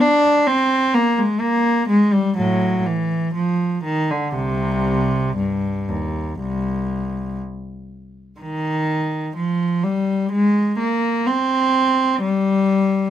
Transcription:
0.00 D4
0.47 C4
0.94 A#3
1.18 G#3
1.40 A#3
1.89 G#3
2.13 G3
2.37 A2 F#3
2.86 E3
3.34 F3
3.84 D#3
4.10 D3
4.35 C2 C3
5.37 G2
5.89 D#2
6.40 C2
8.40 D#3
9.36 F3
9.83 G3
10.32 G#3
10.79 A#3
11.26 C4
12.21 G3

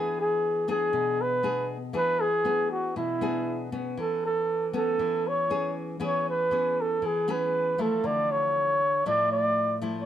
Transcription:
Already playing: E3 B3 D4 G#4
0.20 G#4
0.68 B3 D4 G#4
0.93 B2
1.21 B4
1.43 B3 D4 G#4
1.93 E3 B3 D4 G#4 B4
2.21 G#4
2.45 B3 D4 G#4
2.71 F#4
2.96 B2 E4
3.21 B3 D4 G#4
3.72 B3 C#4
3.97 E3 A4
4.26 A4
4.73 B3 C#4 A4
4.99 E3
5.28 C#5
5.50 B3 C#4 G#4
6.00 E3 B3 C#4 G#4
6.05 C#5
6.30 B4
6.51 B3 C#4 G#4
6.81 A4
7.02 E3 G#4
7.28 B3 C#4 G#4 B4
7.78 F3 A3 E4 A4
8.04 D3 D5
8.31 C#5
9.06 A2 F3 A3 E4 D5
9.32 D5
9.82 F3 A3 E4
10.01 C#5

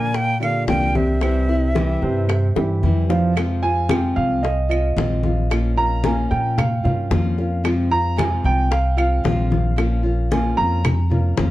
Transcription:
Already playing: A#2 D3 F3 A#3 D4 A#4 G#5
0.13 G5, muted nylon-string guitar stroke, high bongo, high conga
0.40 D3 A#3 D4 F4 G4 F5, high bongo, high conga, claves
0.67 C2 D3 F3 A#3 D4 G4 G5, high bongo, low bongo, high conga
0.94 C3 A#3 C4 D4 G4 C5 E5, high bongo, high conga
1.21 C3 E3 G3 C4 E4 C5, high bongo, claves
1.49 G3 C4 E4, high bongo, high conga
1.75 C3 E3 G3 C4 E4 G4, high bongo, high conga
2.02 G2 C3 C4 C5, high bongo, high conga
2.29 muted nylon-string guitar stroke, high bongo, high conga, claves
2.55 G2 E3 G3 C4 E4 G4, high bongo, high conga
2.83 F2 C3 E3 G3 C4 E4, high conga
3.09 F3 G3 C4 E4 F4 F5, low bongo, high conga
3.35 C3 F3 G#3 C4 F4, high bongo, high conga, claves
3.62 G#3 C4 F4 G#5, high conga
3.89 C3 F3 G#3 C4 F4 G5, high bongo, high conga, claves
4.16 C2 F5, high conga
4.43 D#5, muted nylon-string guitar stroke, high bongo, high conga
4.69 G#3 C4 F4 D#5, high conga, claves
4.97 A#1 C3 F3 G#3 C4 F4, high bongo, low bongo, high conga
5.23 G#3 C4 F4, high conga
5.50 F3 A#3 C#4 F4, high bongo, high conga, claves
5.77 A#3 C#4 F4 A#5, high conga
6.03 F3 A#3 C#4 F4 G#5, high bongo, high conga
6.31 A#2 G5, high bongo, high conga
6.58 F5, muted nylon-string guitar stroke, high bongo, high conga, low conga, claves
6.84 G2 A#3 C#4 F4 F5, high bongo, high conga, low conga
7.11 F2 F3 A#3 C#4 F4, high bongo, low bongo, high conga
7.38 A#3 C#4 F4, high bongo, high conga
7.64 C3 F3 G#3 C4 F4, high bongo, high conga, claves
7.90 G#3 C4 F4 A#5, high conga
8.16 C3 F3 G#3 C4 F4 G#5, high bongo, high conga, claves
8.44 C2 G5, high conga
8.70 F5, muted nylon-string guitar stroke, high bongo, high conga
8.97 G#3 C4 F4 F5, high conga, claves
9.24 A#1 C3 F3 G#3 C4 F4, high bongo, low bongo, high conga
9.50 G#3 C4 F4, high conga
9.76 F3 A#3 C#4 F4, high bongo, high conga, claves
10.03 A#3 C#4 F4, high conga
10.31 F3 A#3 C#4 F4 G#5, high bongo, high conga
10.57 F2 A#5, high bongo, high conga
10.84 muted nylon-string guitar stroke, high bongo, high conga, low conga, claves
11.10 A#3 C#4 F4, high bongo, high conga, low conga
11.37 F2 F3 A#3 C#4 F4, high bongo, low bongo, high conga

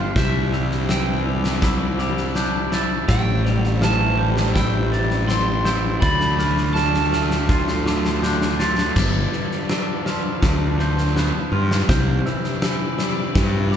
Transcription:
Already playing: G1 F3 G3 B3 D4 F4 B4 F5 F6
0.15 C2 C3 C4 E4 D5 E5, kick, snare
0.52 G3 E6, snare
0.71 snare
0.89 E3 G5 E6, snare
1.26 G3 E6
1.44 snare
1.62 E4, kick, snare
1.99 G3 D6, snare
2.17 snare
2.35 D4 G6, snare
2.72 E4 A6, snare
3.08 A1 A2 A3 G4 C5 G5 E6, kick, snare
3.45 G3, snare
3.64 F5, snare
3.82 E3 A5 F6, snare
4.18 G3 G6
4.37 snare
4.55 E4 G5, kick, snare
4.92 G3 A6, snare
5.10 snare
5.28 C4 C6, snare
5.65 E4 G6, snare
6.01 D2 D3 D4 F4 A4 B5 A6, kick, snare
6.20 snare
6.38 A3 F6, snare
6.57 snare
6.74 D3 A5 F6, snare
6.94 snare
7.12 A3 F6, snare
7.31 snare
7.49 F4, kick, snare
7.68 snare
7.86 A3 D6, snare
8.05 snare
8.23 D4 G6, snare
8.41 snare
8.59 F4 A6, snare
8.78 snare
8.96 G1 G2 G3 D4 F4 B4 D6, kick, snare, crash
9.33 D3, snare
9.51 snare
9.69 D3 E6, snare
10.05 F3 F6, snare
10.42 D2 D3, kick, snare
10.79 F3 G6, snare
10.98 snare
11.15 B3, snare
11.52 G2 F4 F6
11.71 snare
11.88 C2 C3 C4 E4 D5 G6, kick, snare
12.26 E3 E6, snare
12.44 snare
12.62 E3 E6, snare
12.98 G3 E6, snare
13.35 G2 E3, kick, snare
13.72 G3 D6, snare

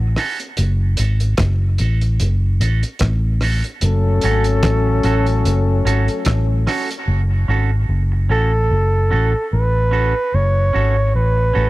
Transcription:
Already playing: A1 C#3 A3 F#4
0.16 C#4 F#4 A4, cross-stick, open hi-hat
0.40 closed hi-hat
0.57 F#1 C#3 A3 F#4, closed hi-hat
0.97 G#1 C#4 F#4 A4, closed hi-hat
1.20 closed hi-hat
1.37 F#1, kick, cross-stick, closed hi-hat
1.62 muted clean electric guitar stroke
1.78 A1 C#4 F#4 A4, closed hi-hat
2.01 closed hi-hat
2.20 F#1, closed hi-hat
2.60 A1 C#4 F#4 A4, closed hi-hat
2.83 closed hi-hat
2.99 A1, kick, cross-stick, closed hi-hat
3.41 C#4 F#4 A4, cross-stick, open hi-hat
3.64 closed hi-hat
3.81 F#1 F#3 A3 C#4 A4, closed hi-hat
4.21 G#1 C#4 F#4 A4, closed hi-hat
4.44 closed hi-hat
4.63 A1, kick, cross-stick, closed hi-hat
4.87 muted clean electric guitar stroke
5.03 A1 C#4 F#4 A4, closed hi-hat
5.26 closed hi-hat
5.45 F#1, closed hi-hat
5.85 G#1 C#4 F#4 A4, closed hi-hat
6.08 closed hi-hat
6.25 A1, kick, cross-stick, closed hi-hat
6.67 C#4 F#4 A4, cross-stick, open hi-hat
6.91 closed hi-hat
7.08 F#1
7.48 G#1 C#4 F#4 A4
7.89 F#1
8.12 muted clean electric guitar stroke
8.29 A1 C#4 F#4 A4
8.71 F#1
9.11 A1 C#4 F#4 A4
9.53 A1 B4
9.91 C#4 F#4 A4
10.34 F#1 C#5
10.73 G#1 C#4 F#4 A4
11.15 A1 B4
11.37 muted clean electric guitar stroke
11.53 A1 C#4 F#4 A4

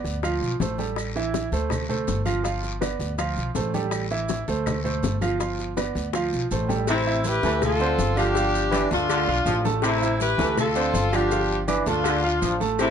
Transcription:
Already playing: B3 B4 D5
0.04 D2, high bongo, high conga, short guiro, maracas
0.23 F3 F4 F5, high bongo, high conga, long guiro, claves, maracas
0.41 B1, high bongo, high conga, maracas
0.60 A1 A3 A4 C5, high bongo, low bongo, high conga, short guiro, maracas
0.78 G3 G4 A4, high conga, short guiro, maracas
0.96 high bongo, high conga, long guiro, claves, maracas
1.15 E3 E4 E5, high bongo, high conga, maracas
1.34 high bongo, high conga, short guiro, maracas
1.52 D2 A3 A4 C5, high bongo, high conga, short guiro, maracas
1.70 high bongo, high conga, low conga, long guiro, claves, maracas
1.89 A3 A4 C5, high bongo, high conga, low conga, maracas
2.07 G1, high bongo, low bongo, high conga, short guiro, maracas
2.25 F3 F4 F5, high conga, short guiro, claves, maracas
2.44 F3 F4 F5, high bongo, high conga, long guiro, maracas
2.63 high bongo, high conga, maracas
2.81 B3 B4 D5, high bongo, high conga, short guiro, claves, maracas
2.99 D2, high bongo, high conga, short guiro, maracas
3.18 F3 F4 F5, high bongo, high conga, long guiro, claves, maracas
3.36 B1, high bongo, high conga, maracas
3.55 A1 A3 A4 C5, high bongo, low bongo, high conga, short guiro, maracas
3.74 G3 G4 A4, high conga, short guiro, maracas
3.91 high bongo, high conga, long guiro, claves, maracas
4.10 E3 E4 E5, high bongo, high conga, maracas
4.29 high bongo, high conga, short guiro, maracas
4.48 D2 A3 A4 C5, high bongo, high conga, short guiro, maracas
4.66 high bongo, high conga, low conga, long guiro, claves, maracas
4.84 A3 A4 C5, high bongo, high conga, low conga, maracas
5.03 G1, high bongo, low bongo, high conga, short guiro, maracas
5.21 F3 F4 F5, high conga, short guiro, claves, maracas
5.39 F3 F4 F5, high bongo, high conga, long guiro, maracas
5.59 high bongo, high conga, maracas
5.77 B3 B4 D5, high bongo, high conga, short guiro, claves, maracas
5.95 D2, high bongo, high conga, short guiro, maracas
6.13 F3 F4 F5, high bongo, high conga, long guiro, claves, maracas
6.33 B1, high conga, maracas
6.51 A1 A3 A4 C5, high conga, short guiro, maracas
6.69 G3 G4 A4, low bongo, high conga, short guiro, maracas
6.87 C3 C4 E4, cowbell, high conga, long guiro, claves, maracas
7.07 E4 E5 E6, high conga
7.24 G4 B4, cowbell, high conga, short guiro, maracas
7.43 D2 E3 A3 A4 A5, high conga, short guiro, maracas
7.62 F4 A4, cowbell, high conga, low conga, long guiro, claves, maracas
7.80 D3 C4 C5 C6, cowbell, high conga
7.98 G1, cowbell, high conga, short guiro, maracas
8.16 D3 F3 D4 F4 G4 F5, cowbell, short guiro, claves, maracas
8.35 F3 F4 F5, cowbell, high conga, long guiro, maracas
8.55 high conga, maracas
8.72 E3 D4 D5 D6, cowbell, high conga, short guiro, claves, maracas
8.91 D2 A3 D4 F4 A4 A5, cowbell, short guiro, maracas
9.09 D3, cowbell, high conga, long guiro, claves, maracas
9.28 B1 F4 F5 F6, high conga
9.46 A1 F3, cowbell, high conga, short guiro, maracas
9.65 A3 A4 A5, high conga, short guiro, maracas
9.82 C3 C4 E4, cowbell, high conga, long guiro, claves, maracas
10.02 E4 E5 E6, high conga, maracas
10.20 G4 B4, cowbell, high conga, short guiro, maracas
10.38 D2 E3 A3 A4 A5, high conga, short guiro, maracas
10.57 F4 A4, cowbell, high conga, low conga, long guiro, claves, maracas
10.76 D3 C4 C5 C6, cowbell, high conga, maracas
10.94 G1, cowbell, high conga, short guiro, maracas
11.12 D3 F3 D4 F4 G4 F5, cowbell, short guiro, claves, maracas
11.31 F3 F4 F5, cowbell, high conga, long guiro, maracas
11.50 high conga
11.68 E3 D4 D5 D6, cowbell, high conga, short guiro, claves, maracas
11.86 D2 A3 D4 F4 A4 A5, cowbell, high conga, short guiro, maracas
12.04 D3, cowbell, high conga, long guiro, claves, maracas
12.24 F4 F5 F6, high conga
12.42 A1 F3, cowbell, high conga, short guiro, maracas
12.60 A3 A4 A5, high conga, short guiro, maracas
12.79 C3 C4 E4, cowbell, high conga, long guiro, claves, maracas

